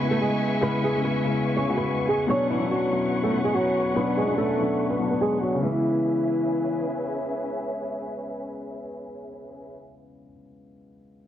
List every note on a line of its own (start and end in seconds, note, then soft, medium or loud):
0.00 0.61 C#3 medium
0.00 0.63 G#3 medium
0.00 0.64 B3 medium
0.00 0.02 E4 loud
0.00 0.42 E4 medium
0.00 1.70 F#4 medium
0.00 2.26 B4 medium
0.00 2.26 E5 medium
0.00 2.26 G#5 medium
0.00 2.26 C#6 medium
0.11 0.19 A3 medium
0.11 0.19 A4 medium
0.21 0.61 G#3 medium
0.21 0.60 G#4 medium
0.61 0.82 C#3 loud
0.61 0.83 G#3 medium
0.61 0.79 B3 medium
0.61 0.84 B3 medium
0.61 0.79 B4 loud
0.65 0.84 E4 loud
0.84 1.00 G#3 medium
0.84 0.99 G#4 medium
0.92 1.13 C#3 medium
0.92 1.14 G#3 medium
0.92 1.15 B3 medium
0.96 1.15 C#4 medium
1.04 1.54 B3 medium
1.04 1.53 B4 medium
1.23 1.51 C#3 medium
1.23 1.52 G#3 medium
1.23 1.53 B3 medium
1.28 1.53 E4 medium
1.57 1.73 C#4 medium
1.57 1.72 C#5 medium
1.66 2.07 C#3 medium
1.66 2.08 G#3 medium
1.66 2.08 B3 medium
1.70 2.09 F#4 medium
1.77 2.07 B3 medium
1.77 2.07 B4 medium
2.09 2.25 G#3 medium
2.09 2.24 G#4 medium
2.27 2.48 B2 loud
2.27 2.49 F#3 medium
2.27 2.50 C#4 medium
2.27 2.46 C#4 medium
2.27 5.60 B4 medium
2.27 2.45 C#5 loud
2.27 5.60 C#5 medium
2.27 5.60 F#5 medium
2.27 5.60 C#6 medium
2.31 2.50 D4 loud
2.50 2.67 E3 medium
2.50 2.66 E4 medium
2.58 2.80 B2 medium
2.58 2.81 F#3 medium
2.58 2.81 C#4 medium
2.63 2.82 D4 medium
2.71 3.21 F#3 medium
2.71 3.20 F#4 medium
2.90 3.18 B2 medium
2.90 3.19 F#3 medium
2.90 3.19 C#4 medium
2.94 3.20 E4 medium
3.23 3.40 A3 medium
3.23 3.39 A4 medium
3.31 3.73 B2 medium
3.31 3.74 F#3 medium
3.31 3.74 C#4 medium
3.35 3.75 E4 medium
3.44 3.52 G#3 medium
3.44 3.52 G#4 medium
3.54 3.94 F#3 medium
3.54 3.94 F#4 medium
3.95 4.16 B2 loud
3.95 4.16 F#3 medium
3.95 4.12 B3 medium
3.95 4.17 C#4 medium
3.95 4.12 B4 loud
3.99 4.18 D4 loud
4.17 4.33 G#3 medium
4.17 4.33 G#4 medium
4.25 4.47 B2 medium
4.25 4.47 F#3 medium
4.25 4.48 C#4 medium
4.29 4.49 D4 medium
4.38 4.87 A3 medium
4.38 4.87 A4 medium
4.57 4.85 B2 medium
4.57 4.85 F#3 medium
4.57 4.86 C#4 medium
4.61 4.87 D4 medium
4.90 5.06 B3 medium
4.90 5.06 B4 medium
4.98 5.40 B2 medium
4.98 5.40 F#3 medium
4.98 5.41 C#4 medium
5.02 5.42 D4 medium
5.11 5.19 B3 medium
5.11 5.19 B4 medium
5.21 5.37 G#3 medium
5.21 5.37 G#4 medium
5.42 5.58 F#3 medium
5.42 5.58 F#4 medium
5.55 10.24 C#3 medium
5.60 6.84 E3 medium
5.60 10.29 G#3 medium
5.60 9.72 C#4 medium
5.60 9.72 G#4 medium
5.60 9.72 B4 medium
5.60 9.72 E5 medium
5.66 10.35 B3 medium
5.71 10.40 E4 medium